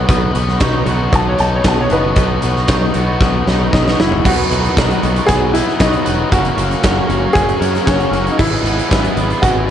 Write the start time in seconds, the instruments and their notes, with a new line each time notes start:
Already playing: overdriven electric guitar B2 F#3 B3 D#4 F#4
0.07 picked electric bass B1, overdriven electric guitar B3, kick, closed hi-hat
0.34 picked electric bass B1, overdriven electric guitar B3, closed hi-hat
0.48 snare
0.60 picked electric bass B1, overdriven electric guitar D#4, kick, snare, closed hi-hat
0.86 picked electric bass B1, overdriven electric guitar B2 F#3 B3 D#4 F#4, closed hi-hat
1.12 picked electric bass B1, overdriven electric guitar B3, upright piano A5, kick, closed hi-hat
1.29 upright piano C#5
1.39 picked electric bass B1, overdriven electric guitar D#4, upright piano A5, closed hi-hat
1.55 upright piano C#5
1.64 picked electric bass B1, overdriven electric guitar B3, kick, snare, closed hi-hat
1.68 upright piano A5
1.81 upright piano C#5
1.90 picked electric bass F#1, overdriven electric guitar B2 F#3 B3 D#4 F#4, upright piano D#4 B4, closed hi-hat
2.16 picked electric bass B1, overdriven electric guitar B3, kick, closed hi-hat
2.42 picked electric bass B1, overdriven electric guitar B3, closed hi-hat
2.56 snare
2.68 picked electric bass B1, overdriven electric guitar D#4, kick, snare, closed hi-hat
2.94 picked electric bass B1, overdriven electric guitar B2 F#3 B3 D#4 F#4, closed hi-hat
3.21 picked electric bass B1, overdriven electric guitar B3, kick, snare
3.47 picked electric bass B1, overdriven electric guitar D#4, snare
3.71 picked electric bass B1, overdriven electric guitar B3, upright piano D#4, kick, snare
3.88 snare
3.98 picked electric bass F#1, upright piano E4, overdriven electric guitar F#4, snare
4.12 floor tom
4.25 picked electric bass B1, overdriven electric guitar B2 D#3 F#3 B3 D#4 F#4, upright piano F#4, kick, crash
4.29 overdriven electric guitar B4
4.38 closed hi-hat
4.51 picked electric bass B1, overdriven electric guitar F#3 B3 D#4 B4, closed hi-hat
4.65 closed hi-hat
4.76 picked electric bass B1, overdriven electric guitar B2 D#3 F#3 B3 D#4 F#4 B4, kick, snare, closed hi-hat
4.91 closed hi-hat
5.02 picked electric bass B1, overdriven electric guitar B3 D#4 F#4, closed hi-hat
5.16 closed hi-hat
5.26 picked electric bass B1, overdriven electric guitar B2 F#3 B3 D#4 F#4, upright piano G#4, kick, closed hi-hat
5.54 overdriven electric guitar F#3 B3 D#4 B4, upright piano E4, closed hi-hat
5.69 snare
5.79 picked electric bass B1, overdriven electric guitar F#3 B3 D#4 F#4, upright piano D#4, kick, snare, closed hi-hat
5.83 overdriven electric guitar B4
5.93 closed hi-hat
6.05 picked electric bass E1, overdriven electric guitar F#3 B3 D#4 F#4 B4, closed hi-hat
6.30 picked electric bass F#1, overdriven electric guitar F#2 C#3 F#3 A#3 C#4 F#4 A#4, upright piano F#4, kick, closed hi-hat
6.45 closed hi-hat
6.57 picked electric bass F#1, overdriven electric guitar C#4 F#4 A#4, closed hi-hat
6.71 closed hi-hat
6.82 picked electric bass F#1, overdriven electric guitar F#3 A#3 C#4 F#4, kick, snare, closed hi-hat
6.87 overdriven electric guitar A#4
7.09 picked electric bass F#1, overdriven electric guitar F#3 A#3 C#4 F#4, closed hi-hat
7.33 picked electric bass F#1, overdriven electric guitar F#2 C#3 F#3 A#3 C#4 F#4, upright piano G#4, kick, closed hi-hat
7.49 closed hi-hat
7.60 picked electric bass F#2, overdriven electric guitar C#4 F#4 A#4, closed hi-hat
7.75 snare, closed hi-hat
7.85 picked electric bass F#1, overdriven electric guitar F#3 A#3 C#4 F#4 A#4, upright piano C#4, kick, snare, closed hi-hat
8.00 closed hi-hat
8.11 picked electric bass F#1, overdriven electric guitar F#3 A#3 C#4 F#4 A#4, closed hi-hat
8.27 upright piano D#4, closed hi-hat
8.37 picked electric bass G#1, overdriven electric guitar G#3 B3 E4 G#4 B4, upright piano E4, kick, crash
8.53 closed hi-hat
8.63 picked electric bass G#1, overdriven electric guitar B3 E4 B4, closed hi-hat
8.79 closed hi-hat
8.89 picked electric bass G#1, overdriven electric guitar G#3 B3 E4 G#4 B4, kick, closed hi-hat
8.93 snare
9.04 closed hi-hat
9.16 picked electric bass G#1, overdriven electric guitar B3 E4 G#4, closed hi-hat
9.30 closed hi-hat
9.42 picked electric bass G#1, overdriven electric guitar G#3 B3 E4 G#4, upright piano F#4, kick, closed hi-hat
9.67 overdriven electric guitar B4